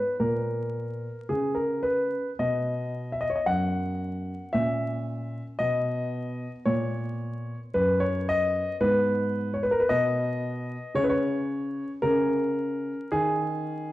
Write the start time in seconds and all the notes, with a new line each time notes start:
Already playing: B3 B4
0.20 A#2 A#4
1.29 C#3 G#4
1.55 A#4
1.83 B4
2.39 B2 B3 D#5
3.12 E5
3.21 D#5
3.30 C#5
3.36 D#5
3.46 F#2 F#5
4.53 A#2 C#4 E5
5.59 B2 B3 D#5
6.66 A#2 C#5
7.74 F#2 B4
8.00 C#5
8.29 D#5
8.80 G#2 B3 B4
9.54 C#5
9.63 B4
9.71 A#4
9.80 B4
9.89 B2 D#5
10.95 C#3 C#4 C#5
11.04 B4
11.10 C#5
12.02 C#3 C#4 A#4
13.12 D#3 G#4